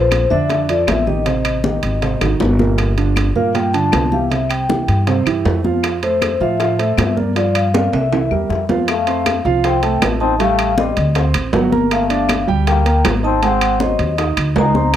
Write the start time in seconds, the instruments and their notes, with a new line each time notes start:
Already playing: upright bass A#1, grand piano F3 F4 A4, vibraphone C5
0.11 high bongo, high conga, high timbale, low timbale, claves
0.30 upright bass F2, grand piano D3 D4 D5, vibraphone E5, high bongo, high conga
0.50 grand piano D3 D4, high bongo, high conga, high timbale
0.69 grand piano F3 F4 A4, vibraphone D5, high bongo, high conga, high timbale
0.87 upright bass A1, vibraphone E5, high bongo, low bongo, high conga, high timbale, low timbale, claves
1.07 grand piano D#3 D#4 G4, vibraphone D#5, high bongo, high conga
1.26 grand piano C3 C4 C5, high bongo, high conga, high timbale
1.45 high conga, high timbale, claves
1.64 grand piano D#3 D#4 G4, high bongo, high conga, low timbale
1.83 upright bass G#1, high bongo, high timbale
2.02 grand piano C3 C4 C5, high bongo, high conga, high timbale
2.21 upright bass G#1, grand piano D#3 D#4 F#4, high bongo, high conga, high timbale, claves
2.40 upright bass G1, low bongo, high conga, low timbale
2.59 grand piano A#2 A#3 A#4, low bongo, high conga
2.78 high bongo, high conga, high timbale, claves
2.98 grand piano D3 D4 F4, high conga, high timbale
3.16 high bongo, high conga, high timbale, low timbale, claves
3.35 upright bass G2, grand piano A#2 A#3 A#4, vibraphone F5, high bongo, high conga
3.54 grand piano A#2 A#3 A#4, vibraphone G5, high bongo, high conga, high timbale
3.74 grand piano D3 D4 F4, vibraphone A5, high bongo, high conga, high timbale
3.92 upright bass C2, high bongo, low bongo, high conga, high timbale, low timbale, claves
4.12 grand piano E3 E4 G4, vibraphone F5, high bongo, high conga
4.30 grand piano C3 C4 C5, vibraphone E5, high bongo, high conga, high timbale
4.50 vibraphone G5, high conga, high timbale, claves
4.69 grand piano E3 E4 G4, high bongo, high conga, low timbale
4.88 upright bass G2, high bongo, high conga, high timbale
5.07 grand piano C3 C4 C5, high bongo, high conga, high timbale
5.26 grand piano E3 E4 G4, high bongo, high conga, high timbale, claves
5.45 upright bass F2, high bongo, low bongo, high conga, low timbale
5.64 grand piano F3 F4 F5, high bongo, high conga
5.83 high bongo, high conga, high timbale, claves
6.03 grand piano A3 A4 C5, vibraphone C5, high conga, high timbale
6.22 high bongo, high conga, high timbale, low timbale, claves
6.40 upright bass A2, grand piano F3 F4 F5, vibraphone E5, high bongo, high conga
6.60 grand piano F3 F4 F5, high bongo, high conga, high timbale
6.79 grand piano A3 A4 C5, high bongo, high conga, high timbale
6.97 upright bass G2, high bongo, low bongo, high conga, high timbale, low timbale, claves
7.16 grand piano A#3 A#4 D5, high bongo, high conga
7.36 grand piano F3 F4 F5, vibraphone D5, high bongo, high timbale
7.55 vibraphone F5, high conga, high timbale, claves
7.74 grand piano A#3 A#4 D5, high bongo, high conga, high timbale
7.93 upright bass C2, vibraphone E5, high bongo, high conga, high timbale
8.12 grand piano E3 E4 E5, high bongo, high conga, high timbale
8.31 upright bass E2, grand piano G3 G4 A#4, high bongo, high conga, claves
8.49 upright bass F2, high bongo, low bongo, high conga
8.69 grand piano F3 F4 F5, high bongo, high conga, low timbale
8.88 trombone A3, vibraphone F5, high bongo, high conga, high timbale, claves
9.07 grand piano C4 C5 C6, high conga, high timbale
9.26 high bongo, high conga, high timbale, low timbale, claves
9.45 upright bass C2, grand piano F3 F4 F5, high bongo, high conga
9.64 trombone C4, vibraphone G5, high bongo, high conga, high timbale
9.83 grand piano A3 A4 A5, high conga, high timbale
10.02 upright bass A1, high bongo, low bongo, high conga, high timbale, low timbale, claves
10.20 trombone C4, grand piano D#4 D#5 D#6, vibraphone A5, high bongo
10.39 grand piano G3 G4 G5, trombone A3, vibraphone F5, high bongo, high conga, high timbale
10.59 high conga, high timbale, claves
10.77 trombone G3, grand piano C4 C5 C6, vibraphone D#5, high bongo, high conga, low timbale
10.97 upright bass D2, high bongo, high conga, high timbale
11.15 grand piano C4 C5 C6, high bongo, high conga, high timbale
11.34 upright bass A1, high bongo, high conga, high timbale, claves
11.53 upright bass G1, grand piano F#3 F#4 F#5, high bongo, low bongo, high conga, low timbale
11.72 grand piano A#3 A#4 A#5, high bongo, high conga
11.91 trombone A3, vibraphone F5, high bongo, high conga, high timbale, claves
12.10 grand piano D4 D5 D6, high conga, high timbale
12.29 high bongo, high conga, high timbale, low timbale, claves
12.47 upright bass D2, grand piano G3 G4 G5, high bongo, high conga
12.67 trombone A#3, vibraphone G5, high bongo, high conga, high timbale
12.85 grand piano A#3 A#4 A#5, high bongo, high conga, high timbale
13.05 upright bass G#1, high bongo, low bongo, high conga, high timbale, low timbale, claves
13.23 trombone C4, grand piano D#4 D#5 D#6, vibraphone A5, high bongo
13.42 grand piano G#3 G#4 G#5, trombone C4, vibraphone F#5, high bongo, high conga, high timbale
13.61 high conga, high timbale, claves
13.80 trombone F#3, grand piano C4 C5 C6, vibraphone D#5, high bongo, high conga, low timbale
13.99 upright bass D#2, high bongo, high conga, high timbale
14.17 grand piano D#4 D#5 D#6, high bongo, high conga, high timbale
14.37 upright bass D2, high bongo, high conga, high timbale, claves
14.56 upright bass C#2, grand piano G#3 G#4 G#5, trombone D#4, vibraphone A#5, high bongo, low bongo, low timbale
14.75 grand piano C4 C5 C6, high bongo, high conga